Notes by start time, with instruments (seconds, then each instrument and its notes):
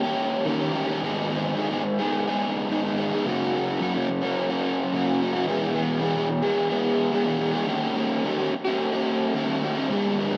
0.03 overdriven electric guitar A#3 C#4 G4
0.45 overdriven electric guitar D#3 A#3 C#4 G4
0.59 overdriven electric guitar A#3 C#4 G4
0.72 overdriven electric guitar D#3 A#3 C#4 G4
0.87 overdriven electric guitar A#3 C#4 G4
1.02 overdriven electric guitar G#2 D#3 G#3 B3 D#4 G#4
1.28 overdriven electric guitar G#3 B3 D#4 G#4
1.56 overdriven electric guitar G#2 D#3 G#3 B3 D#4 G#4
1.70 overdriven electric guitar G#3 B3 D#4 G#4
1.84 muted overdriven electric guitar stroke
1.99 overdriven electric guitar G#3 B3 D#4 G#4
2.27 overdriven electric guitar G#3 B3 D#4 G#4
2.69 overdriven electric guitar G#2 D#3 G#3 B3 D#4 G#4
2.83 overdriven electric guitar G#3 B3 D#4 G#4
2.97 overdriven electric guitar G#3 B3 D#4 G#4
3.12 overdriven electric guitar G#3 B3 D#4 G#4
3.25 overdriven electric guitar F#2 C#3 F#3 A#3 C#4 F#4
3.53 overdriven electric guitar F#3 A#3 C#4 F#4
3.79 overdriven electric guitar F#2 C#3 F#3 A#3 C#4 F#4
3.94 overdriven electric guitar F#3 A#3 C#4 F#4
4.09 muted overdriven electric guitar stroke
4.22 overdriven electric guitar F#3 A#3 C#4 F#4
4.50 overdriven electric guitar F#3 A#3 C#4 F#4
4.93 overdriven electric guitar F#2 C#3 F#3 A#3 C#4 F#4
5.06 overdriven electric guitar F#3 A#3 C#4 F#4
5.19 overdriven electric guitar F#3 A#3 C#4 F#4
5.32 overdriven electric guitar F#3 A#3 C#4 F#4
5.46 overdriven electric guitar E2 B2 E3 G#3 B3 G#4
5.72 overdriven electric guitar E3 G#3 B3 G#4
5.99 overdriven electric guitar E2 B2 E3 G#3 B3 G#4
6.15 overdriven electric guitar E3 G#3 B3 G#4
6.29 muted overdriven electric guitar stroke
6.43 overdriven electric guitar E3 G#3 B3 G#4
6.70 overdriven electric guitar E3 G#3 B3 G#4
7.11 overdriven electric guitar E2 B2 E3 G#3 B3 G#4
7.24 overdriven electric guitar E3 G#3 B3 G#4
7.39 overdriven electric guitar E3 G#3 B3 G#4
7.51 overdriven electric guitar G#3 B3 G#4
7.55 overdriven electric guitar E3
7.66 overdriven electric guitar D#3 A#3 C#4 G4
7.94 overdriven electric guitar D#3 A#3 C#4 G4
8.24 overdriven electric guitar D#3 A#3 C#4 G4
8.38 overdriven electric guitar A#3 C#4 G4
8.53 muted overdriven electric guitar stroke
8.65 overdriven electric guitar C#4 G4
8.69 overdriven electric guitar A#3
8.93 overdriven electric guitar C#4 G4
8.97 overdriven electric guitar A#3
9.34 overdriven electric guitar D#3 A#3 C#4 G4
9.47 overdriven electric guitar A#3 C#4 G4
9.61 overdriven electric guitar D#3 A#3 C#4
9.65 overdriven electric guitar G4
9.75 overdriven electric guitar A#3 C#4 G4
9.88 overdriven electric guitar G#2 D#3 G#3 B3 D#4 G#4
10.18 overdriven electric guitar G#3 B3 D#4 G#4